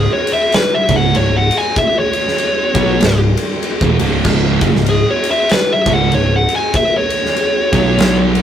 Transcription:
0.00 0.11 G#4 loud
0.13 0.32 C#5 loud
0.27 ride medium
0.33 0.52 E5 medium
0.52 0.73 B4 medium
0.52 snare loud
0.52 ride loud
0.74 0.94 E5 medium
0.88 1.13 C#1 loud
0.88 1.13 C#2 medium
0.88 1.13 G#2 loud
0.88 1.14 C#3 loud
0.88 kick loud
0.88 ride medium
0.96 1.15 F#5 loud
1.14 1.48 C#1 medium
1.14 1.43 C#2 medium
1.14 1.44 G#2 medium
1.14 1.35 C#5 medium
1.14 ride loud
1.36 1.56 F#5 medium
1.51 ride medium
1.58 1.77 G#5 medium
1.76 1.98 E5 medium
1.76 kick loud
1.76 ride loud
1.99 3.19 C#5 loud
2.13 ride medium
2.28 snare soft
2.38 ride loud
2.74 2.99 B1 loud
2.74 2.99 B2 loud
2.74 3.00 F#3 loud
2.74 3.00 B3 loud
2.74 kick loud
2.74 ride medium
3.00 3.35 C#1 medium
3.00 3.30 C#2 medium
3.00 3.30 G#2 medium
3.00 snare loud
3.00 ride loud
3.37 ride medium
3.63 ride loud
3.81 3.98 E1 loud
3.81 3.98 E2 loud
3.81 3.99 B2 loud
3.81 kick loud
3.99 4.23 C#1 loud
3.99 4.24 C#2 loud
3.99 4.24 G#2 loud
3.99 4.25 C#3 loud
3.99 ride medium
4.24 4.59 C#1 loud
4.24 4.60 C#2 medium
4.24 4.61 G#2 loud
4.24 4.61 C#3 loud
4.24 kick loud
4.24 crash loud
4.61 4.73 F#1 loud
4.61 4.73 F#2 loud
4.61 4.74 C#3 loud
4.61 kick loud
4.61 ride medium
4.74 5.04 C#1 medium
4.74 4.98 C#2 medium
4.74 4.98 G#2 medium
4.74 snare soft
4.86 5.08 G#4 loud
4.86 ride loud
5.10 5.29 C#5 medium
5.24 ride medium
5.31 5.50 E5 loud
5.49 5.70 B4 medium
5.49 snare loud
5.49 ride loud
5.73 5.91 E5 loud
5.85 6.10 C#1 loud
5.85 6.11 C#2 medium
5.85 6.11 G#2 loud
5.85 6.12 C#3 loud
5.85 kick loud
5.85 ride medium
5.93 6.12 F#5 loud
6.12 6.46 C#1 medium
6.12 6.41 C#2 medium
6.12 6.41 G#2 medium
6.12 6.33 C#5 medium
6.12 ride loud
6.36 6.54 F#5 medium
6.49 ride medium
6.56 6.75 G#5 loud
6.74 6.95 E5 loud
6.74 kick loud
6.74 ride loud
6.97 8.17 C#5 loud
7.10 ride medium
7.25 snare soft
7.36 ride loud
7.72 7.96 B1 loud
7.72 7.97 B2 medium
7.72 7.98 F#3 medium
7.72 7.98 B3 loud
7.72 kick loud
7.72 ride medium
7.98 8.42 B1 loud
7.98 8.42 B2 loud
7.98 8.42 F#3 loud
7.98 8.42 B3 loud
7.98 snare loud
7.98 ride loud
8.35 ride medium

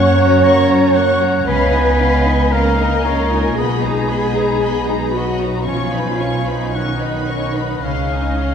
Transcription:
0.00 1.21 F#2 medium
0.00 1.42 F#2 medium
0.00 1.46 C#3 soft
0.00 0.16 A#3 soft
0.00 1.51 A#3 soft
0.00 1.30 C#4 medium
0.00 1.20 F#4 soft
0.00 1.47 C#5 medium
0.00 3.61 C#5 soft
0.00 0.15 F#5 medium
0.00 0.16 F#5 soft
0.00 0.45 F#5 medium
0.00 0.17 C#6 soft
0.00 0.41 C#6 medium
0.00 1.19 C#6 medium
0.16 0.43 C#4 soft
0.16 0.42 C#5 soft
0.16 0.67 F#5 medium
0.16 0.44 A#5 soft
0.42 0.67 A#3 medium
0.42 0.67 F#5 medium
0.42 0.96 A#5 medium
0.42 3.60 C#6 medium
0.46 0.69 C#6 medium
0.68 0.95 C#4 soft
0.68 0.95 C#5 soft
0.68 1.51 F#5 soft
0.68 0.95 A#5 soft
0.95 1.21 A#3 soft
0.95 1.51 A#4 soft
0.95 1.47 F#5 medium
0.95 1.21 F#5 soft
0.95 1.21 C#6 soft
1.21 1.47 C#4 soft
1.21 1.51 F#4 soft
1.21 1.48 C#5 soft
1.21 1.47 A#5 soft
1.45 3.52 C#2 medium
1.45 3.61 C#3 medium
1.45 2.50 B3 medium
1.45 1.72 C#4 medium
1.45 2.50 B4 medium
1.45 1.72 D#5 medium
1.45 1.72 F5 medium
1.45 2.53 G#5 medium
1.45 2.49 B5 medium
1.73 5.64 G#3 soft
1.73 1.99 D#4 soft
1.73 2.00 D#5 soft
1.73 2.00 G#5 soft
1.99 2.26 C#4 soft
1.99 4.07 D#5 soft
1.99 2.26 D#5 soft
1.99 2.26 F5 soft
2.25 2.52 D#4 soft
2.25 2.52 D#5 soft
2.25 2.77 F5 soft
2.25 2.53 G#5 soft
2.51 3.57 A#3 medium
2.51 2.77 C#4 soft
2.51 3.57 A#4 medium
2.51 2.77 D#5 soft
2.51 3.07 F5 medium
2.51 2.77 F5 soft
2.51 3.56 A#5 medium
2.51 4.59 D#6 soft
2.78 3.04 D#4 soft
2.78 3.05 D#5 soft
2.78 3.61 F5 soft
2.78 3.05 G#5 soft
3.04 3.30 C#4 soft
3.04 5.71 G#4 soft
3.04 3.57 C#5 soft
3.04 3.31 D#5 soft
3.04 3.31 F5 soft
3.29 3.56 D#4 soft
3.29 3.60 F4 soft
3.29 3.57 D#5 soft
3.29 3.57 G#5 soft
3.56 7.84 B1 medium
3.56 5.66 B2 medium
3.56 5.14 G#3 medium
3.56 3.81 B3 soft
3.56 5.14 G#4 medium
3.56 4.10 D#5 medium
3.56 3.82 D#5 soft
3.56 5.13 G#5 medium
3.56 3.82 B5 soft
3.82 5.71 B3 soft
3.82 4.09 D#4 soft
3.82 4.09 B4 soft
3.82 4.09 A#5 soft
4.08 4.35 B3 soft
4.08 5.38 B4 medium
4.08 4.86 D#5 soft
4.08 4.35 D#5 soft
4.08 4.35 B5 soft
4.34 4.61 D#4 soft
4.34 4.62 B4 soft
4.34 5.71 A#5 soft
4.34 4.62 A#5 soft
4.60 4.85 B3 soft
4.60 4.86 D#5 soft
4.60 4.86 B5 soft
4.60 6.73 D#6 soft
4.86 5.13 D#4 soft
4.86 5.15 B4 soft
4.86 6.20 D#5 soft
4.86 5.13 A#5 soft
5.12 5.39 B3 soft
5.12 5.66 F#4 medium
5.12 5.71 A#4 soft
5.12 5.41 D#5 soft
5.12 5.66 F#5 soft
5.12 5.40 B5 soft
5.16 5.67 F#3 medium
5.39 5.67 D#4 soft
5.39 7.55 D#4 soft
5.39 5.68 B4 soft
5.39 5.67 A#5 soft
5.65 7.88 B2 soft
5.65 7.25 B2 soft
5.65 6.75 F3 medium
5.65 5.91 C#4 soft
5.65 6.75 F4 medium
5.65 5.93 C#5 soft
5.65 6.74 F5 medium
5.65 6.77 G#5 medium
5.65 5.91 C#6 soft
5.92 8.11 C#4 soft
5.92 6.20 D#4 soft
5.92 6.21 B4 soft
5.92 6.20 B5 soft
6.19 6.47 C#4 soft
6.19 6.48 C#5 soft
6.19 7.01 D#5 soft
6.19 6.47 C#6 soft
6.46 6.74 D#4 soft
6.46 6.74 B4 soft
6.46 7.28 C#5 soft
6.46 6.74 B5 soft
6.72 7.84 D#3 soft
6.72 7.00 C#4 soft
6.72 7.84 D#4 medium
6.72 6.99 C#5 soft
6.72 7.84 D#5 medium
6.72 7.86 F#5 soft
6.72 6.98 C#6 soft
6.72 8.54 D#6 soft
7.00 7.28 D#4 soft
7.00 7.28 B4 soft
7.00 8.39 D#5 soft
7.00 7.28 B5 soft
7.27 7.55 C#4 soft
7.27 7.56 C#5 soft
7.27 8.54 C#5 soft
7.27 7.55 C#6 soft
7.54 7.83 D#4 soft
7.54 8.54 D#4 soft
7.54 7.83 B4 soft
7.54 7.83 B5 soft
7.81 8.54 C#2 soft
7.81 8.54 C#3 soft
7.81 8.09 C#4 soft
7.81 8.54 C#4 medium
7.81 8.54 C#5 medium
7.81 8.08 D#5 soft
7.81 8.09 F5 soft
7.81 8.54 F5 soft
7.85 8.54 C#3 soft
8.10 8.54 C#4 soft
8.10 8.39 D#4 soft
8.10 8.39 D#5 soft
8.10 8.38 G#5 soft
8.37 8.54 C#4 soft
8.37 8.54 D#5 soft
8.37 8.54 F5 soft

